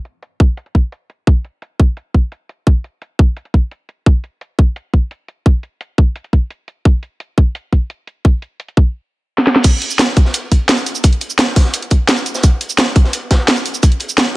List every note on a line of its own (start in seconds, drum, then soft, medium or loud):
0.05 closed hi-hat medium
0.23 closed hi-hat medium
0.40 kick loud
0.57 closed hi-hat medium
0.66 closed hi-hat soft
0.75 kick medium
0.75 closed hi-hat medium
0.92 closed hi-hat medium
1.10 closed hi-hat medium
1.27 kick loud
1.27 closed hi-hat medium
1.45 closed hi-hat medium
1.62 closed hi-hat medium
1.80 kick loud
1.97 closed hi-hat medium
2.14 kick medium
2.14 closed hi-hat medium
2.32 closed hi-hat medium
2.49 closed hi-hat medium
2.67 kick loud
2.67 closed hi-hat medium
2.84 closed hi-hat medium
3.02 closed hi-hat medium
3.19 kick loud
3.19 closed hi-hat medium
3.37 closed hi-hat medium
3.45 closed hi-hat soft
3.54 kick medium
3.54 closed hi-hat medium
3.71 closed hi-hat medium
3.89 closed hi-hat medium
4.06 kick loud
4.06 closed hi-hat medium
4.24 closed hi-hat medium
4.41 closed hi-hat medium
4.59 kick loud
4.59 closed hi-hat medium
4.76 closed hi-hat medium
4.94 kick medium
4.94 closed hi-hat medium
5.11 closed hi-hat medium
5.28 closed hi-hat medium
5.46 kick loud
5.46 closed hi-hat medium
5.63 closed hi-hat medium
5.81 closed hi-hat medium
5.98 kick medium
5.98 closed hi-hat medium
6.16 closed hi-hat medium
6.24 closed hi-hat soft
6.33 kick medium
6.33 closed hi-hat medium
6.50 closed hi-hat medium
6.68 closed hi-hat medium
6.85 kick loud
6.85 closed hi-hat medium
7.03 closed hi-hat medium
7.20 closed hi-hat medium
7.38 kick loud
7.38 closed hi-hat medium
7.55 closed hi-hat medium
7.72 kick medium
7.72 closed hi-hat medium
7.90 closed hi-hat medium
8.07 closed hi-hat medium
8.25 kick loud
8.25 closed hi-hat loud
8.42 closed hi-hat medium
8.60 closed hi-hat medium
8.68 closed hi-hat soft
8.77 kick loud
8.77 closed hi-hat medium
9.38 snare medium
9.47 snare medium
9.56 snare medium
9.64 kick loud
9.64 closed hi-hat loud
9.64 closed hi-hat medium
9.64 crash loud
9.64 shaker medium
9.82 closed hi-hat medium
9.91 shaker medium
9.99 snare loud
9.99 closed hi-hat loud
9.99 shaker medium
10.16 kick loud
10.16 closed hi-hat medium
10.25 snare soft
10.34 closed hi-hat medium
10.34 closed hi-hat loud
10.34 shaker medium
10.52 kick medium
10.52 closed hi-hat medium
10.69 snare loud
10.69 closed hi-hat medium
10.69 shaker medium
10.78 shaker soft
10.86 closed hi-hat medium
10.86 shaker soft
10.95 shaker medium
11.04 kick loud
11.04 closed hi-hat medium
11.04 closed hi-hat loud
11.04 shaker medium
11.13 closed hi-hat soft
11.21 closed hi-hat medium
11.30 shaker medium
11.39 snare loud
11.39 closed hi-hat loud
11.39 closed hi-hat medium
11.39 shaker soft
11.56 kick loud
11.56 snare medium
11.56 closed hi-hat medium
11.56 open hi-hat medium
11.65 snare soft
11.74 closed hi-hat loud
11.74 closed hi-hat medium
11.74 shaker medium
11.82 closed hi-hat soft
11.90 kick medium
11.90 closed hi-hat medium
12.09 snare loud
12.09 closed hi-hat medium
12.09 shaker soft
12.17 shaker soft
12.26 closed hi-hat medium
12.26 shaker soft
12.35 snare medium
12.35 shaker medium
12.43 kick loud
12.43 closed hi-hat loud
12.43 closed hi-hat medium
12.43 shaker medium
12.61 closed hi-hat medium
12.70 shaker medium
12.78 snare loud
12.78 closed hi-hat loud
12.78 shaker soft
12.96 kick loud
12.96 closed hi-hat medium
13.04 snare soft
13.13 closed hi-hat loud
13.13 closed hi-hat medium
13.13 shaker medium
13.31 kick medium
13.31 snare loud
13.31 closed hi-hat medium
13.48 snare loud
13.48 closed hi-hat medium
13.48 shaker soft
13.57 shaker soft
13.66 closed hi-hat medium
13.66 shaker soft
13.74 shaker medium
13.83 kick loud
13.83 closed hi-hat loud
13.83 shaker soft
13.92 closed hi-hat soft
14.00 closed hi-hat medium
14.09 shaker medium
14.18 snare loud
14.18 closed hi-hat medium
14.18 shaker soft